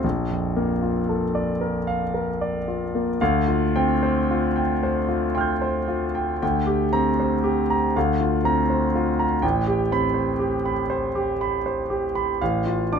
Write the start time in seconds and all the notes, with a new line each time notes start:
0.04 A#1
0.31 F2
0.56 A#3
0.82 F4
1.09 A4
1.35 D5
1.61 A#4
1.87 F5
2.14 A#4
2.41 D5
2.68 F4
2.95 A#3
3.21 D2 F5
3.48 F4
3.76 C4 G5
4.03 C5
4.31 F4
4.56 G5
4.83 C5
5.09 F4
5.35 G5 C6 F6
5.41 G6
5.62 C5
5.88 F4
6.15 G5
6.42 D2 G5
6.67 G4
6.93 C4 A#5
7.20 C5
7.44 G4
7.70 A#5
7.96 D2 F5
8.21 F4
8.45 C4 A#5
8.70 C5
8.95 F4
9.19 A#5
9.42 A1 G5
9.67 G4
9.92 C4 B5
10.14 C5
10.39 G4
10.65 B5
10.90 C5
11.15 G4
11.41 B5
11.66 C5
11.90 G4
12.15 B5
12.41 A1 F5
12.66 F4
12.93 D4 D6